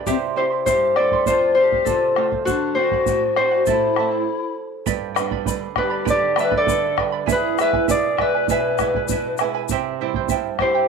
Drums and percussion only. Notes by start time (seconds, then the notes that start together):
0.06 bombo low, shaker
0.66 bombo low, shaker
0.96 bombo rim
1.12 bombo low
1.26 bombo low, shaker
1.72 bombo low
1.86 bombo low, shaker
2.16 bombo rim
2.32 bombo low
2.47 bombo low, shaker
2.92 bombo low
3.06 bombo low, shaker
3.36 bombo rim
3.66 bombo low, shaker
3.96 bombo rim
4.86 bombo low, shaker
5.16 bombo rim, shaker
5.31 bombo low
5.46 bombo low, shaker
5.76 bombo rim, bombo low
6.06 bombo low, shaker
6.36 bombo rim, shaker
6.52 bombo low
6.67 bombo low, shaker
6.98 bombo rim, bombo low
7.27 bombo low, shaker
7.58 bombo rim, shaker
7.73 bombo low
7.88 bombo low, shaker
8.18 bombo rim, bombo low
8.48 bombo low, shaker
8.78 bombo rim, bombo low, shaker
8.94 bombo low
9.08 bombo low, shaker
9.37 bombo rim, shaker
9.69 bombo low, shaker
10.14 bombo low
10.28 bombo low, shaker
10.59 bombo rim, bombo low